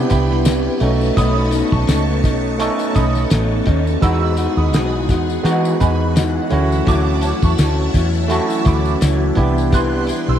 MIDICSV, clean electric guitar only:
0, 0, Header, 1, 2, 480
1, 0, Start_track
1, 0, Key_signature, 4, "major"
1, 0, Tempo, 713436
1, 788, Time_signature, 4, 2, 24, 8
1, 6991, End_track
2, 0, Start_track
2, 0, Title_t, "Clean electric guitar"
2, 0, Program_c, 0, 27
2, 0, Note_on_c, 0, 48, 85
2, 0, Note_on_c, 0, 55, 90
2, 0, Note_on_c, 0, 59, 88
2, 65, Note_on_c, 0, 64, 65
2, 68, Note_off_c, 0, 48, 0
2, 69, Note_off_c, 0, 55, 0
2, 70, Note_off_c, 0, 59, 0
2, 78, Note_on_c, 0, 59, 54
2, 86, Note_on_c, 0, 55, 49
2, 302, Note_off_c, 0, 55, 0
2, 304, Note_on_c, 0, 48, 59
2, 307, Note_off_c, 0, 64, 0
2, 309, Note_off_c, 0, 59, 0
2, 310, Note_on_c, 0, 55, 67
2, 318, Note_on_c, 0, 59, 71
2, 321, Note_on_c, 0, 64, 69
2, 538, Note_off_c, 0, 64, 0
2, 541, Note_on_c, 0, 63, 62
2, 546, Note_off_c, 0, 48, 0
2, 548, Note_off_c, 0, 59, 0
2, 549, Note_off_c, 0, 55, 0
2, 551, Note_on_c, 0, 61, 55
2, 562, Note_on_c, 0, 57, 49
2, 782, Note_off_c, 0, 57, 0
2, 784, Note_off_c, 0, 63, 0
2, 785, Note_on_c, 0, 47, 86
2, 789, Note_off_c, 0, 61, 0
2, 790, Note_on_c, 0, 57, 96
2, 796, Note_on_c, 0, 61, 95
2, 796, Note_on_c, 0, 63, 95
2, 1010, Note_off_c, 0, 63, 0
2, 1018, Note_on_c, 0, 63, 52
2, 1025, Note_off_c, 0, 61, 0
2, 1026, Note_off_c, 0, 47, 0
2, 1028, Note_off_c, 0, 57, 0
2, 1033, Note_on_c, 0, 61, 60
2, 1039, Note_on_c, 0, 57, 47
2, 1255, Note_on_c, 0, 47, 71
2, 1256, Note_off_c, 0, 57, 0
2, 1262, Note_off_c, 0, 63, 0
2, 1263, Note_off_c, 0, 61, 0
2, 1264, Note_on_c, 0, 57, 67
2, 1271, Note_on_c, 0, 61, 69
2, 1277, Note_on_c, 0, 63, 76
2, 1495, Note_off_c, 0, 63, 0
2, 1501, Note_off_c, 0, 47, 0
2, 1503, Note_on_c, 0, 63, 54
2, 1505, Note_off_c, 0, 57, 0
2, 1507, Note_off_c, 0, 61, 0
2, 1515, Note_on_c, 0, 61, 53
2, 1522, Note_on_c, 0, 57, 45
2, 1741, Note_off_c, 0, 57, 0
2, 1743, Note_on_c, 0, 47, 83
2, 1744, Note_off_c, 0, 61, 0
2, 1744, Note_off_c, 0, 63, 0
2, 1749, Note_on_c, 0, 57, 89
2, 1752, Note_on_c, 0, 61, 84
2, 1758, Note_on_c, 0, 63, 94
2, 1975, Note_off_c, 0, 63, 0
2, 1983, Note_on_c, 0, 63, 63
2, 1984, Note_off_c, 0, 47, 0
2, 1985, Note_off_c, 0, 61, 0
2, 1987, Note_off_c, 0, 57, 0
2, 1993, Note_on_c, 0, 61, 50
2, 2004, Note_on_c, 0, 57, 47
2, 2223, Note_off_c, 0, 57, 0
2, 2223, Note_on_c, 0, 47, 61
2, 2224, Note_off_c, 0, 63, 0
2, 2227, Note_off_c, 0, 61, 0
2, 2231, Note_on_c, 0, 57, 64
2, 2235, Note_on_c, 0, 61, 70
2, 2242, Note_on_c, 0, 63, 65
2, 2455, Note_off_c, 0, 63, 0
2, 2463, Note_on_c, 0, 63, 61
2, 2464, Note_off_c, 0, 47, 0
2, 2466, Note_off_c, 0, 61, 0
2, 2468, Note_off_c, 0, 57, 0
2, 2474, Note_on_c, 0, 61, 55
2, 2482, Note_on_c, 0, 57, 45
2, 2703, Note_on_c, 0, 52, 87
2, 2704, Note_off_c, 0, 63, 0
2, 2709, Note_off_c, 0, 57, 0
2, 2710, Note_off_c, 0, 61, 0
2, 2712, Note_on_c, 0, 56, 95
2, 2714, Note_on_c, 0, 63, 95
2, 2718, Note_on_c, 0, 66, 95
2, 2932, Note_off_c, 0, 66, 0
2, 2940, Note_on_c, 0, 66, 63
2, 2943, Note_off_c, 0, 63, 0
2, 2944, Note_off_c, 0, 52, 0
2, 2948, Note_off_c, 0, 56, 0
2, 2951, Note_on_c, 0, 63, 50
2, 2960, Note_on_c, 0, 56, 49
2, 3182, Note_off_c, 0, 66, 0
2, 3185, Note_off_c, 0, 56, 0
2, 3185, Note_on_c, 0, 52, 60
2, 3188, Note_off_c, 0, 63, 0
2, 3193, Note_on_c, 0, 56, 73
2, 3198, Note_on_c, 0, 63, 73
2, 3205, Note_on_c, 0, 66, 76
2, 3418, Note_off_c, 0, 66, 0
2, 3425, Note_off_c, 0, 52, 0
2, 3426, Note_on_c, 0, 66, 55
2, 3428, Note_off_c, 0, 63, 0
2, 3429, Note_off_c, 0, 56, 0
2, 3436, Note_on_c, 0, 63, 49
2, 3444, Note_on_c, 0, 56, 44
2, 3655, Note_off_c, 0, 56, 0
2, 3659, Note_on_c, 0, 52, 83
2, 3660, Note_off_c, 0, 63, 0
2, 3661, Note_off_c, 0, 66, 0
2, 3663, Note_on_c, 0, 56, 93
2, 3668, Note_on_c, 0, 63, 93
2, 3669, Note_on_c, 0, 66, 97
2, 3891, Note_off_c, 0, 66, 0
2, 3899, Note_on_c, 0, 66, 63
2, 3902, Note_off_c, 0, 52, 0
2, 3903, Note_off_c, 0, 63, 0
2, 3904, Note_off_c, 0, 56, 0
2, 3911, Note_on_c, 0, 63, 56
2, 3920, Note_on_c, 0, 56, 56
2, 4133, Note_off_c, 0, 56, 0
2, 4134, Note_on_c, 0, 52, 56
2, 4139, Note_off_c, 0, 63, 0
2, 4141, Note_on_c, 0, 56, 67
2, 4142, Note_off_c, 0, 66, 0
2, 4147, Note_on_c, 0, 63, 69
2, 4154, Note_on_c, 0, 66, 64
2, 4370, Note_off_c, 0, 66, 0
2, 4373, Note_on_c, 0, 64, 60
2, 4379, Note_off_c, 0, 52, 0
2, 4381, Note_off_c, 0, 63, 0
2, 4383, Note_off_c, 0, 56, 0
2, 4384, Note_on_c, 0, 61, 55
2, 4392, Note_on_c, 0, 54, 54
2, 4612, Note_off_c, 0, 54, 0
2, 4615, Note_on_c, 0, 50, 89
2, 4617, Note_off_c, 0, 61, 0
2, 4619, Note_off_c, 0, 64, 0
2, 4620, Note_on_c, 0, 54, 85
2, 4625, Note_on_c, 0, 61, 89
2, 4627, Note_on_c, 0, 64, 101
2, 4853, Note_off_c, 0, 64, 0
2, 4860, Note_off_c, 0, 50, 0
2, 4861, Note_on_c, 0, 64, 61
2, 4862, Note_off_c, 0, 54, 0
2, 4865, Note_off_c, 0, 61, 0
2, 4873, Note_on_c, 0, 61, 55
2, 4881, Note_on_c, 0, 54, 45
2, 5102, Note_on_c, 0, 50, 60
2, 5103, Note_off_c, 0, 54, 0
2, 5103, Note_off_c, 0, 64, 0
2, 5106, Note_off_c, 0, 61, 0
2, 5111, Note_on_c, 0, 54, 66
2, 5114, Note_on_c, 0, 61, 72
2, 5121, Note_on_c, 0, 64, 71
2, 5333, Note_off_c, 0, 64, 0
2, 5341, Note_on_c, 0, 64, 58
2, 5344, Note_off_c, 0, 50, 0
2, 5344, Note_off_c, 0, 61, 0
2, 5348, Note_off_c, 0, 54, 0
2, 5352, Note_on_c, 0, 61, 52
2, 5363, Note_on_c, 0, 54, 49
2, 5577, Note_off_c, 0, 54, 0
2, 5580, Note_on_c, 0, 50, 79
2, 5581, Note_off_c, 0, 61, 0
2, 5583, Note_off_c, 0, 64, 0
2, 5585, Note_on_c, 0, 54, 90
2, 5589, Note_on_c, 0, 61, 93
2, 5594, Note_on_c, 0, 64, 95
2, 5812, Note_off_c, 0, 64, 0
2, 5820, Note_off_c, 0, 61, 0
2, 5820, Note_on_c, 0, 64, 62
2, 5823, Note_off_c, 0, 50, 0
2, 5825, Note_off_c, 0, 54, 0
2, 5828, Note_on_c, 0, 61, 56
2, 5838, Note_on_c, 0, 54, 54
2, 6059, Note_off_c, 0, 54, 0
2, 6063, Note_off_c, 0, 64, 0
2, 6067, Note_off_c, 0, 61, 0
2, 6067, Note_on_c, 0, 54, 61
2, 6075, Note_on_c, 0, 61, 73
2, 6080, Note_on_c, 0, 64, 73
2, 6297, Note_off_c, 0, 64, 0
2, 6305, Note_on_c, 0, 64, 63
2, 6307, Note_off_c, 0, 54, 0
2, 6311, Note_off_c, 0, 61, 0
2, 6316, Note_on_c, 0, 59, 59
2, 6325, Note_on_c, 0, 55, 51
2, 6540, Note_off_c, 0, 55, 0
2, 6541, Note_on_c, 0, 48, 84
2, 6542, Note_off_c, 0, 59, 0
2, 6546, Note_off_c, 0, 64, 0
2, 6548, Note_on_c, 0, 55, 93
2, 6550, Note_on_c, 0, 59, 97
2, 6556, Note_on_c, 0, 64, 106
2, 6778, Note_off_c, 0, 64, 0
2, 6784, Note_off_c, 0, 48, 0
2, 6786, Note_on_c, 0, 64, 61
2, 6788, Note_off_c, 0, 55, 0
2, 6789, Note_off_c, 0, 59, 0
2, 6798, Note_on_c, 0, 59, 53
2, 6806, Note_on_c, 0, 55, 51
2, 6991, Note_off_c, 0, 55, 0
2, 6991, Note_off_c, 0, 59, 0
2, 6991, Note_off_c, 0, 64, 0
2, 6991, End_track
0, 0, End_of_file